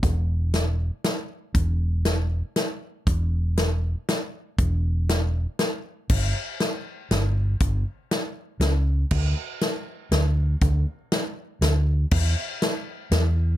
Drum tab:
CC |------|------|------|------|
HH |x-x-x-|x-x-x-|x-x-x-|x-x-x-|
SD |--o-o-|--o-o-|--o-o-|--o-o-|
BD |o-----|o-----|o-----|o-----|

CC |x-----|------|x-----|------|
HH |--x-x-|x-x-x-|--x-x-|x-x-x-|
SD |--o-o-|--o-o-|--o-o-|--o-o-|
BD |o-----|o-----|o-----|o-----|

CC |x-----|
HH |--x-x-|
SD |--o-o-|
BD |o-----|